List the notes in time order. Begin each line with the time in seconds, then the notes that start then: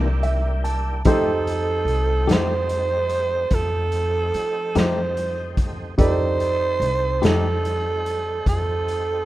Already playing: C2 A#3 D4 E4 G4 A#4 D5
0.23 E5, closed hi-hat
0.64 A5, closed hi-hat
1.05 F2 F3 A3 C4 D#4 G4 A4 C5, kick, closed hi-hat
1.10 A4
1.47 closed hi-hat
1.85 C2, closed hi-hat
2.26 F2 F3 A3 D#4 G4, closed hi-hat
2.31 C5, snare
2.69 closed hi-hat
3.09 closed hi-hat
3.51 F2 A4, kick, closed hi-hat
3.92 closed hi-hat
4.34 F3, closed hi-hat
4.75 F2 F3 A3 D#4 G4 C5, snare, closed hi-hat
5.17 closed hi-hat
5.57 kick, closed hi-hat
5.98 F2 C#3 E3 A#3 D#4 G4 A4 C5 D5, kick, closed hi-hat
6.39 C4 D#4 G4 A4, closed hi-hat
6.80 C2, closed hi-hat
7.22 F2 F3 A3 D#4 G4 A4, snare, closed hi-hat
7.65 closed hi-hat
8.06 closed hi-hat
8.46 F2 A4, kick, closed hi-hat
8.88 closed hi-hat